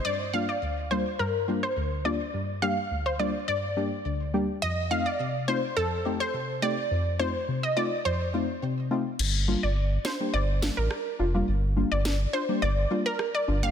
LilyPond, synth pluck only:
\new Staff \with { instrumentName = "Synth pluck" } { \time 4/4 \key g \minor \tempo 4 = 105 d''16 r16 f''16 d''8 r16 c''8 bes'16 r8 c''16 r8 d''16 r16 | r8 f''16 r8 c''16 d''16 r16 d''8. r4 r16 | ees''16 r16 f''16 d''8 r16 c''8 a'16 r8 c''16 r8 d''16 r16 | r8 c''16 r8 ees''16 d''16 r16 c''8. r4 r16 |
r8. d''8 r16 c''8 d''16 r8 bes'16 r4 | r8. d''8 r16 c''8 d''16 r8 bes'16 r16 d''16 r16 f''16 | }